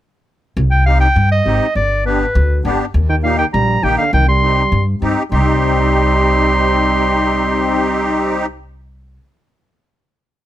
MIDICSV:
0, 0, Header, 1, 5, 480
1, 0, Start_track
1, 0, Key_signature, -3, "minor"
1, 0, Tempo, 297619
1, 908, Time_signature, 4, 2, 24, 8
1, 16859, End_track
2, 0, Start_track
2, 0, Title_t, "Clarinet"
2, 0, Program_c, 0, 71
2, 1139, Note_on_c, 0, 79, 86
2, 1367, Note_off_c, 0, 79, 0
2, 1383, Note_on_c, 0, 77, 89
2, 1609, Note_off_c, 0, 77, 0
2, 1617, Note_on_c, 0, 79, 96
2, 2069, Note_off_c, 0, 79, 0
2, 2120, Note_on_c, 0, 75, 91
2, 2784, Note_off_c, 0, 75, 0
2, 2836, Note_on_c, 0, 74, 87
2, 3278, Note_off_c, 0, 74, 0
2, 3318, Note_on_c, 0, 71, 77
2, 4207, Note_off_c, 0, 71, 0
2, 4990, Note_on_c, 0, 79, 75
2, 5097, Note_off_c, 0, 79, 0
2, 5218, Note_on_c, 0, 77, 79
2, 5444, Note_off_c, 0, 77, 0
2, 5459, Note_on_c, 0, 79, 86
2, 5568, Note_off_c, 0, 79, 0
2, 5697, Note_on_c, 0, 82, 92
2, 6181, Note_on_c, 0, 79, 95
2, 6205, Note_off_c, 0, 82, 0
2, 6407, Note_off_c, 0, 79, 0
2, 6417, Note_on_c, 0, 77, 82
2, 6643, Note_off_c, 0, 77, 0
2, 6672, Note_on_c, 0, 79, 96
2, 6891, Note_off_c, 0, 79, 0
2, 6911, Note_on_c, 0, 84, 97
2, 7801, Note_off_c, 0, 84, 0
2, 8583, Note_on_c, 0, 84, 85
2, 13648, Note_off_c, 0, 84, 0
2, 16859, End_track
3, 0, Start_track
3, 0, Title_t, "Accordion"
3, 0, Program_c, 1, 21
3, 1388, Note_on_c, 1, 60, 67
3, 1393, Note_on_c, 1, 63, 67
3, 1398, Note_on_c, 1, 67, 74
3, 1725, Note_off_c, 1, 60, 0
3, 1727, Note_off_c, 1, 63, 0
3, 1729, Note_off_c, 1, 67, 0
3, 2341, Note_on_c, 1, 60, 70
3, 2346, Note_on_c, 1, 63, 70
3, 2353, Note_on_c, 1, 67, 80
3, 2681, Note_off_c, 1, 60, 0
3, 2683, Note_off_c, 1, 63, 0
3, 2687, Note_off_c, 1, 67, 0
3, 3305, Note_on_c, 1, 59, 66
3, 3309, Note_on_c, 1, 62, 70
3, 3316, Note_on_c, 1, 67, 85
3, 3642, Note_off_c, 1, 59, 0
3, 3644, Note_off_c, 1, 62, 0
3, 3648, Note_off_c, 1, 67, 0
3, 4263, Note_on_c, 1, 59, 94
3, 4272, Note_on_c, 1, 62, 82
3, 4278, Note_on_c, 1, 67, 93
3, 4601, Note_off_c, 1, 59, 0
3, 4605, Note_off_c, 1, 62, 0
3, 4608, Note_off_c, 1, 67, 0
3, 5218, Note_on_c, 1, 58, 73
3, 5226, Note_on_c, 1, 63, 68
3, 5231, Note_on_c, 1, 67, 81
3, 5557, Note_off_c, 1, 58, 0
3, 5561, Note_off_c, 1, 63, 0
3, 5564, Note_off_c, 1, 67, 0
3, 6176, Note_on_c, 1, 58, 78
3, 6184, Note_on_c, 1, 63, 67
3, 6189, Note_on_c, 1, 67, 85
3, 6515, Note_off_c, 1, 58, 0
3, 6519, Note_off_c, 1, 63, 0
3, 6522, Note_off_c, 1, 67, 0
3, 7127, Note_on_c, 1, 60, 67
3, 7133, Note_on_c, 1, 63, 63
3, 7138, Note_on_c, 1, 67, 72
3, 7470, Note_off_c, 1, 60, 0
3, 7473, Note_off_c, 1, 63, 0
3, 7476, Note_off_c, 1, 67, 0
3, 8086, Note_on_c, 1, 60, 86
3, 8093, Note_on_c, 1, 63, 77
3, 8101, Note_on_c, 1, 67, 95
3, 8429, Note_off_c, 1, 60, 0
3, 8432, Note_off_c, 1, 63, 0
3, 8437, Note_off_c, 1, 67, 0
3, 8574, Note_on_c, 1, 67, 92
3, 8577, Note_on_c, 1, 63, 75
3, 8579, Note_on_c, 1, 60, 87
3, 13643, Note_off_c, 1, 67, 0
3, 13645, Note_off_c, 1, 63, 0
3, 13646, Note_off_c, 1, 60, 0
3, 16859, End_track
4, 0, Start_track
4, 0, Title_t, "Trombone"
4, 0, Program_c, 2, 57
4, 4990, Note_on_c, 2, 51, 72
4, 5096, Note_off_c, 2, 51, 0
4, 5219, Note_on_c, 2, 46, 72
4, 5445, Note_off_c, 2, 46, 0
4, 5465, Note_on_c, 2, 51, 61
4, 5573, Note_off_c, 2, 51, 0
4, 5706, Note_on_c, 2, 55, 79
4, 6185, Note_on_c, 2, 51, 71
4, 6210, Note_off_c, 2, 55, 0
4, 6416, Note_off_c, 2, 51, 0
4, 6425, Note_on_c, 2, 50, 74
4, 6647, Note_off_c, 2, 50, 0
4, 6667, Note_on_c, 2, 51, 80
4, 6888, Note_off_c, 2, 51, 0
4, 6907, Note_on_c, 2, 55, 86
4, 7799, Note_off_c, 2, 55, 0
4, 8569, Note_on_c, 2, 55, 82
4, 13641, Note_off_c, 2, 55, 0
4, 16859, End_track
5, 0, Start_track
5, 0, Title_t, "Upright bass"
5, 0, Program_c, 3, 32
5, 913, Note_on_c, 3, 36, 99
5, 1679, Note_off_c, 3, 36, 0
5, 1870, Note_on_c, 3, 43, 95
5, 2253, Note_off_c, 3, 43, 0
5, 2350, Note_on_c, 3, 32, 87
5, 2541, Note_off_c, 3, 32, 0
5, 2829, Note_on_c, 3, 31, 91
5, 3596, Note_off_c, 3, 31, 0
5, 3795, Note_on_c, 3, 38, 106
5, 4176, Note_off_c, 3, 38, 0
5, 4271, Note_on_c, 3, 31, 94
5, 4461, Note_off_c, 3, 31, 0
5, 4745, Note_on_c, 3, 39, 101
5, 5512, Note_off_c, 3, 39, 0
5, 5709, Note_on_c, 3, 34, 102
5, 6090, Note_off_c, 3, 34, 0
5, 6179, Note_on_c, 3, 34, 79
5, 6373, Note_off_c, 3, 34, 0
5, 6659, Note_on_c, 3, 36, 96
5, 7427, Note_off_c, 3, 36, 0
5, 7611, Note_on_c, 3, 43, 96
5, 7999, Note_off_c, 3, 43, 0
5, 8094, Note_on_c, 3, 43, 85
5, 8289, Note_off_c, 3, 43, 0
5, 8578, Note_on_c, 3, 36, 93
5, 14774, Note_off_c, 3, 36, 0
5, 16859, End_track
0, 0, End_of_file